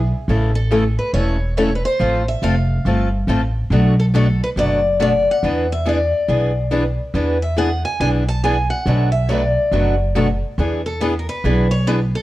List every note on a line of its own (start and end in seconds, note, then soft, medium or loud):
0.00 0.11 B1 medium
0.28 0.97 A1 medium
0.28 0.50 C#3 medium
0.28 0.50 E3 medium
0.28 0.50 A3 medium
0.28 0.51 C#4 medium
0.28 0.51 E4 medium
0.28 0.51 A4 medium
0.55 0.95 A4 medium
0.71 0.82 C#3 medium
0.71 0.83 E3 medium
0.71 0.83 A3 medium
0.71 0.83 C#4 medium
0.71 0.83 E4 medium
0.71 0.83 A4 medium
0.99 1.13 B4 medium
1.13 1.82 E1 medium
1.13 1.36 C#3 medium
1.13 1.36 E3 medium
1.13 1.36 A3 medium
1.13 1.36 C#4 medium
1.13 1.36 E4 medium
1.13 1.37 A4 medium
1.13 1.54 C#5 medium
1.57 1.69 C#3 medium
1.57 1.68 E3 medium
1.57 1.68 A3 medium
1.57 1.69 C#4 medium
1.57 1.69 E4 medium
1.57 1.69 A4 medium
1.57 1.75 C#5 medium
1.75 1.84 B4 medium
1.85 2.25 C5 medium
2.00 2.34 A1 medium
2.00 2.22 F3 medium
2.00 2.22 A3 medium
2.00 2.22 C4 medium
2.00 2.22 F4 medium
2.00 2.22 A4 medium
2.28 2.43 E5 medium
2.42 2.79 F1 medium
2.42 2.54 F3 medium
2.42 2.54 A3 medium
2.42 2.54 C4 medium
2.42 2.54 F4 medium
2.42 2.54 A4 medium
2.42 3.52 F5 medium
2.85 3.22 G1 medium
2.85 3.07 F3 medium
2.85 3.07 A3 medium
2.85 3.08 C4 medium
2.85 3.08 F4 medium
2.85 3.08 A4 medium
3.27 3.64 A1 medium
3.27 3.40 F3 medium
3.27 3.41 A3 medium
3.27 3.40 C4 medium
3.27 3.41 F4 medium
3.27 3.41 A4 medium
3.70 4.39 B1 medium
3.70 3.93 B2 medium
3.70 3.93 F#3 medium
3.70 3.93 A3 medium
3.70 3.94 D4 medium
3.70 3.94 F#4 medium
3.70 3.94 B4 medium
4.00 4.05 A4 medium
4.15 4.26 B2 medium
4.15 4.26 F#3 medium
4.15 4.26 A3 medium
4.15 4.26 D4 medium
4.15 4.26 F#4 medium
4.15 4.40 A4 medium
4.15 4.26 B4 medium
4.44 4.49 B4 medium
4.56 5.25 F#1 medium
4.56 4.79 B2 medium
4.56 4.79 F#3 medium
4.56 4.79 A3 medium
4.56 4.79 D4 medium
4.56 4.79 F#4 medium
4.56 4.79 B4 medium
4.56 4.98 D5 medium
5.00 5.11 B2 medium
5.00 5.11 F#3 medium
5.00 5.12 A3 medium
5.00 5.12 D4 medium
5.00 5.12 F#4 medium
5.00 5.12 B4 medium
5.00 5.29 D5 medium
5.31 5.69 F#5 loud
5.43 6.11 E2 medium
5.43 5.65 E3 medium
5.43 5.65 B3 medium
5.43 5.65 D4 medium
5.43 5.65 G#4 medium
5.43 5.65 B4 medium
5.72 5.87 E5 medium
5.86 5.97 E3 medium
5.86 5.98 B3 medium
5.86 5.98 D4 medium
5.86 5.98 G#4 medium
5.86 5.98 B4 medium
5.86 6.97 D5 medium
6.29 6.97 B1 medium
6.29 6.51 E3 medium
6.29 6.51 B3 medium
6.29 6.51 D4 medium
6.29 6.51 G#4 medium
6.29 6.51 B4 medium
6.71 6.83 E3 medium
6.71 6.83 B3 medium
6.71 6.83 D4 medium
6.71 6.83 G#4 medium
6.71 6.83 B4 medium
7.14 7.83 E2 medium
7.14 7.36 E3 medium
7.14 7.37 B3 medium
7.14 7.37 D4 medium
7.14 7.37 G#4 medium
7.14 7.37 B4 medium
7.42 7.58 E5 medium
7.58 7.69 E3 medium
7.58 7.69 B3 medium
7.58 7.69 D4 medium
7.58 7.70 G#4 medium
7.58 7.70 B4 medium
7.58 7.85 F#5 medium
7.85 8.00 G#5 medium
8.00 8.69 B1 medium
8.00 8.22 E3 medium
8.00 8.23 B3 medium
8.00 8.23 D4 medium
8.00 8.23 G#4 medium
8.00 8.23 B4 medium
8.00 8.08 G#5 medium
8.29 8.43 A5 medium
8.44 8.55 E3 medium
8.44 8.55 B3 medium
8.44 8.56 D4 medium
8.44 8.56 G#4 medium
8.44 8.56 B4 medium
8.44 8.70 G#5 loud
8.70 9.10 F#5 medium
8.86 9.55 B1 medium
8.86 9.08 B2 medium
8.86 9.09 F#3 medium
8.86 9.09 A3 medium
8.86 9.09 D4 medium
8.86 9.09 F#4 medium
8.86 9.09 B4 medium
9.12 9.29 E5 medium
9.29 9.41 B2 medium
9.29 9.41 F#3 medium
9.29 9.42 A3 medium
9.29 9.42 D4 medium
9.29 9.42 F#4 medium
9.29 9.42 B4 medium
9.29 10.38 D5 medium
9.72 10.41 F#1 medium
9.72 9.94 B2 medium
9.72 9.94 F#3 medium
9.72 9.95 A3 medium
9.72 9.95 D4 medium
9.72 9.95 F#4 medium
9.72 9.95 B4 medium
10.15 10.27 B2 medium
10.15 10.27 F#3 medium
10.15 10.27 A3 medium
10.15 10.27 D4 medium
10.15 10.27 F#4 medium
10.15 10.27 B4 medium
10.58 11.27 E2 medium
10.58 10.80 E3 medium
10.58 10.80 B3 medium
10.58 10.80 D4 medium
10.58 10.80 G#4 medium
10.58 10.81 B4 medium
10.86 11.00 A4 medium
11.01 11.13 E3 medium
11.01 11.13 B3 medium
11.01 11.13 D4 medium
11.01 11.13 G#4 medium
11.01 11.06 A4 medium
11.01 11.13 B4 medium
11.19 11.28 A#4 medium
11.29 11.73 B4 medium
11.44 12.12 B1 medium
11.44 11.66 E3 medium
11.44 11.66 B3 medium
11.44 11.66 D4 medium
11.44 11.66 G#4 medium
11.44 11.66 B4 medium
11.71 11.85 C#5 medium
11.87 11.98 E3 medium
11.87 11.99 B3 medium
11.87 11.99 D4 medium
11.87 11.99 G#4 medium
11.87 11.95 B4 loud
11.87 11.99 B4 medium
12.15 12.22 A4 medium